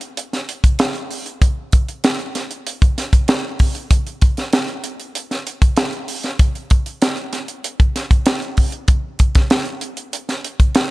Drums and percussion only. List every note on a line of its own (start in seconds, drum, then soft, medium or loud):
0.01 closed hi-hat soft
0.17 closed hi-hat medium
0.33 snare soft
0.33 closed hi-hat soft
0.49 closed hi-hat medium
0.64 kick loud
0.64 closed hi-hat medium
0.79 snare loud
0.79 closed hi-hat medium
0.95 closed hi-hat soft
1.11 open hi-hat medium
1.26 closed hi-hat soft
1.42 kick loud
1.42 closed hi-hat medium
1.72 kick loud
1.72 closed hi-hat medium
1.89 closed hi-hat soft
2.04 snare loud
2.04 closed hi-hat medium
2.19 closed hi-hat soft
2.35 snare soft
2.35 closed hi-hat medium
2.51 closed hi-hat medium
2.67 closed hi-hat medium
2.82 kick loud
2.82 closed hi-hat soft
2.98 snare soft
2.98 closed hi-hat medium
3.13 kick loud
3.13 closed hi-hat medium
3.28 snare loud
3.28 closed hi-hat medium
3.59 kick loud
3.59 open hi-hat medium
3.75 closed hi-hat soft
3.91 kick loud
3.91 closed hi-hat medium
4.07 closed hi-hat soft
4.22 kick loud
4.22 closed hi-hat medium
4.37 snare soft
4.37 closed hi-hat soft
4.53 snare loud
4.53 closed hi-hat medium
4.68 closed hi-hat soft
4.84 closed hi-hat medium
5.00 closed hi-hat soft
5.15 closed hi-hat medium
5.31 snare soft
5.31 closed hi-hat soft
5.47 closed hi-hat medium
5.62 kick loud
5.62 closed hi-hat medium
5.77 snare loud
5.77 closed hi-hat medium
5.93 closed hi-hat soft
6.08 open hi-hat medium
6.24 snare soft
6.24 closed hi-hat soft
6.39 kick loud
6.39 closed hi-hat medium
6.55 closed hi-hat soft
6.70 kick loud
6.70 closed hi-hat medium
6.86 closed hi-hat soft
7.02 snare loud
7.02 closed hi-hat medium
7.17 closed hi-hat soft
7.33 snare soft
7.33 closed hi-hat medium
7.48 closed hi-hat medium
7.64 closed hi-hat loud
7.80 kick loud
7.80 closed hi-hat soft
7.96 snare soft
7.96 closed hi-hat medium
8.11 kick loud
8.11 closed hi-hat medium
8.26 snare loud
8.26 closed hi-hat medium
8.42 closed hi-hat soft
8.57 kick medium
8.57 open hi-hat medium
8.72 closed hi-hat soft
8.88 kick loud
8.88 closed hi-hat medium
9.19 kick loud
9.19 closed hi-hat medium
9.35 kick loud
9.35 snare soft
9.35 closed hi-hat soft
9.50 snare loud
9.50 closed hi-hat medium
9.65 closed hi-hat soft
9.81 closed hi-hat medium
9.97 closed hi-hat medium
10.13 closed hi-hat medium
10.29 snare soft
10.29 closed hi-hat soft
10.44 closed hi-hat medium
10.60 kick medium
10.60 closed hi-hat medium
10.75 snare loud
10.75 closed hi-hat medium